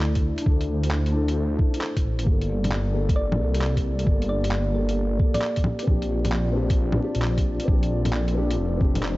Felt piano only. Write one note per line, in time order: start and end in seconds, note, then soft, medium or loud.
0.00 0.42 D4 medium
0.00 0.46 E4 medium
0.00 0.50 A4 medium
0.42 1.10 D4 medium
0.42 1.12 E4 medium
0.50 1.14 A4 medium
1.12 1.25 D4 medium
1.12 1.26 E4 medium
1.12 1.27 A4 medium
1.56 1.69 D4 medium
1.56 1.70 E4 medium
1.60 1.71 A4 medium
1.70 2.23 D4 medium
1.70 2.25 E4 medium
1.78 2.27 A4 medium
2.23 2.91 A#3 medium
2.23 2.92 G4 medium
2.30 2.94 A4 medium
2.92 3.05 A#3 medium
2.92 3.06 G4 medium
2.92 3.07 A4 medium
3.35 4.02 A#3 medium
3.39 4.05 G4 medium
3.43 4.07 A4 medium
4.03 4.71 A#3 medium
4.03 4.73 G4 medium
4.11 4.75 A4 medium
4.73 4.86 A#3 medium
4.73 4.87 G4 medium
4.73 4.88 A4 medium
5.15 5.83 A#3 medium
5.19 5.85 G4 medium
5.19 5.87 A4 medium
5.83 6.51 C4 medium
5.87 6.53 D4 medium
5.87 6.55 G4 medium
6.52 6.66 C4 medium
6.52 6.67 D4 medium
6.56 6.68 G4 medium
6.96 7.63 C4 medium
6.96 7.66 D4 medium
7.04 7.68 G4 medium
7.64 8.32 C4 medium
7.68 8.34 D4 medium
7.72 8.36 G4 medium
8.34 8.47 C4 medium
8.34 8.48 D4 medium
8.38 8.49 G4 medium
8.76 9.17 C4 medium
8.80 9.17 D4 medium
8.80 9.17 G4 medium